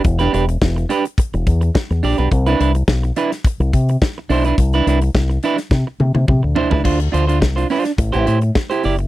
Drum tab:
CC |----------------|----------------|----------------|x---------------|
HH |xxxx-xxxxxxx-xox|xxxx-xxxxxxx--ox|xxxx-xxx--------|-xxx-xoxxxxx-xox|
SD |----o-------o---|----o--o----o---|----o--oo-------|----o--o----o---|
T1 |----------------|----------------|----------oo----|----------------|
T2 |----------------|----------------|------------o---|----------------|
FT |----------------|----------------|--------------oo|----------------|
BD |o---o---o-o-o---|o---o---o-o-o---|o---o---o---o---|o---o---o---o---|